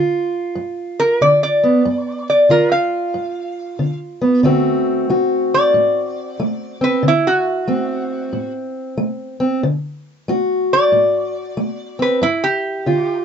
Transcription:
Already playing: D3 F4
0.55 G2
1.00 A#4
1.21 D3 D5
1.43 D5
1.63 B3
1.85 G2
2.30 D5
2.49 D3 F4 A#4
2.72 F5
3.14 G2
3.79 D3
4.21 B3
4.43 D3 A3 C4 F#4
5.10 A3 F#4
5.54 D5
5.74 A2
6.40 A3
6.81 C4 B4
7.03 D3
7.08 E4
7.27 F#4
7.67 A3 C4
8.33 A2
8.97 A3
9.40 C4
9.63 D3
10.28 A3 F#4
10.73 D5
10.92 A2
11.57 A3
11.99 C4 B4
12.22 G2 E4
12.44 G4
12.86 D3 F4

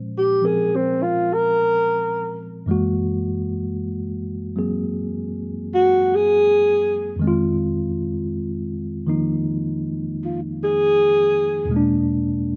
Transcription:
Already playing: A#2 F3 G#3 C#4 C5
0.18 G4
0.42 F3 C4 G#4 A#4
0.76 C4
1.03 F4
1.33 A#4
2.66 F#2 E3 G#3 A#3
2.71 F#4
4.56 F#3 A#3 C4 G#4
5.74 F#4
6.15 G#4
7.16 F2 D#3
7.22 G#3 C4
7.27 F4
9.07 D#3 F3 A#3 D#4
10.25 F4
10.64 G#4
11.65 E2 B2
11.71 G#3 A#3
11.76 D4

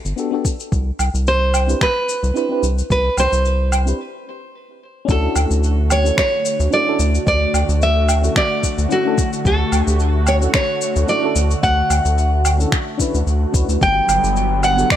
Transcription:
0.05 G1, shaker
0.16 B3 D4 F#4 G4 A4, shaker
0.31 B3 D4 F#4 G4 A4
0.45 kick, shaker
0.60 shaker
0.72 C2, kick, shaker
0.99 C2, low woodblock, shaker
1.14 C2, shaker
1.27 C5, shaker
1.54 low woodblock, shaker
1.67 C4 D4 E4 G4 B4, shaker
1.81 B4, finger snap, kick, shaker
2.09 shaker
2.23 C2, shaker
2.34 C4 D4 E4 G4 B4, shaker
2.49 C4 D4 E4 G4 B4
2.63 C2, shaker
2.78 shaker
2.90 C2 B4, kick, shaker
3.17 C2 C5, low woodblock, shaker
3.32 C2, shaker
3.45 shaker
3.72 low woodblock, shaker
3.86 C4 D4 E4 G4 B4, shaker
5.05 D2 D3 A3 C#4 D4 E4 F#4, kick, shaker
5.10 F#4 A4
5.36 D2, low woodblock, shaker
5.50 D2, shaker
5.63 shaker
5.90 C#5, low woodblock, shaker
6.04 C#4 D4 E4 F#4 A4, shaker
6.18 C#5, finger snap, kick, shaker
6.45 shaker
6.60 D2, shaker
6.70 C#4 D4 E4 F#4 A4 D5, shaker
6.85 C#4 D4 E4 F#4 A4
6.99 D2, shaker
7.15 shaker
7.27 D2 D5, kick, shaker
7.54 D2, low woodblock, shaker
7.69 D2, shaker
7.82 E5, shaker
8.09 low woodblock, shaker
8.22 C#4 D4 E4 F#4 A4, shaker
8.36 D5, finger snap, kick, shaker
8.63 kick, shaker
8.78 D2, shaker
8.89 C#4 D4 E4 F#4 A4, shaker
9.04 C#4 D4 E4 F#4 A4
9.18 kick, shaker
9.33 shaker
9.45 D2 A4, kick, shaker
9.72 D2, low woodblock, shaker
9.87 D2, shaker
10.00 shaker
10.27 C#5, low woodblock, shaker
10.40 C#4 D4 E4 F#4 A4, shaker
10.54 C#5, finger snap, kick, shaker
10.81 shaker
10.96 D2, shaker
11.07 C#4 D4 E4 F#4 A4 D5, shaker
11.22 C#4 D4 E4 F#4 A4
11.36 D2, shaker
11.51 shaker
11.63 D2 F#5, kick, shaker
11.90 D2, low woodblock, shaker
12.05 D2, shaker
12.18 shaker
12.45 low woodblock, shaker
12.58 C#4 D4 E4 F#4 A4, shaker
12.72 finger snap, kick, shaker
12.98 C#4 D4 E4 F#4 B4, kick, shaker
13.14 D2, shaker
13.26 D2, shaker
13.52 D2 C#4 D4 E4 F#4 B4, kick, shaker
13.69 D2, shaker
13.81 G1 D3 F#3 G3 B3 G5, kick, shaker
14.08 G1, low woodblock, shaker
14.23 G1, shaker
14.36 shaker
14.63 F#5, low woodblock, shaker
14.76 B3 D4 F#4 G4 A4, shaker
14.90 D5, finger snap, kick, shaker

